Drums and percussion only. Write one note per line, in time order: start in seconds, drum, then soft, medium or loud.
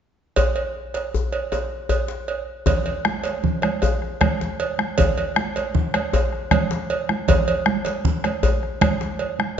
0.36 cowbell medium
0.36 djembe tone medium
0.36 djembe bass medium
0.56 cowbell soft
0.94 cowbell soft
0.94 djembe slap medium
1.14 djembe bass medium
1.33 cowbell soft
1.52 cowbell soft
1.52 djembe tone medium
1.89 cowbell soft
1.89 djembe bass medium
2.08 djembe slap medium
2.28 cowbell soft
2.66 bombo low medium
2.66 cowbell medium
2.66 djembe tone medium
2.66 djembe bass medium
2.66 low conga medium
2.86 cowbell soft
3.05 bombo rim medium
3.05 high conga medium
3.24 cowbell soft
3.24 djembe slap medium
3.24 high conga soft
3.44 bombo low medium
3.44 low conga medium
3.62 bombo rim medium
3.62 cowbell soft
3.62 high conga soft
3.82 cowbell soft
3.82 high conga soft
3.82 djembe tone medium
3.82 djembe bass medium
4.02 bombo rim soft
4.21 bombo rim medium
4.21 bombo low medium
4.21 cowbell medium
4.21 high conga medium
4.21 low conga medium
4.41 bombo rim soft
4.41 djembe slap medium
4.60 cowbell medium
4.79 bombo rim medium
4.79 high conga soft
4.98 bombo low medium
4.98 cowbell medium
4.98 djembe tone medium
4.98 low conga medium
4.98 djembe bass medium
5.18 cowbell soft
5.36 bombo rim medium
5.36 high conga medium
5.56 cowbell soft
5.56 djembe slap soft
5.56 high conga soft
5.75 bombo low medium
5.75 low conga medium
5.94 bombo rim medium
5.94 cowbell soft
5.94 high conga soft
6.13 cowbell medium
6.13 djembe tone medium
6.13 high conga soft
6.13 djembe bass medium
6.33 bombo rim soft
6.51 bombo rim medium
6.51 bombo low medium
6.51 cowbell medium
6.51 high conga medium
6.51 low conga medium
6.71 bombo rim soft
6.71 djembe slap medium
6.90 cowbell medium
7.09 bombo rim medium
7.09 high conga soft
7.28 bombo low medium
7.28 cowbell medium
7.28 djembe tone medium
7.28 low conga medium
7.28 djembe bass medium
7.48 cowbell medium
7.66 bombo rim medium
7.66 high conga medium
7.85 cowbell soft
7.85 djembe slap medium
7.85 high conga soft
8.05 bombo low medium
8.05 low conga medium
8.24 bombo rim medium
8.24 cowbell soft
8.24 high conga medium
8.43 cowbell soft
8.43 djembe tone medium
8.43 high conga soft
8.43 djembe bass medium
8.63 bombo rim soft
8.81 bombo rim medium
8.81 bombo low medium
8.81 cowbell medium
8.81 high conga medium
8.81 low conga medium
9.01 bombo rim soft
9.01 djembe slap medium
9.19 cowbell soft
9.39 bombo rim medium
9.39 high conga soft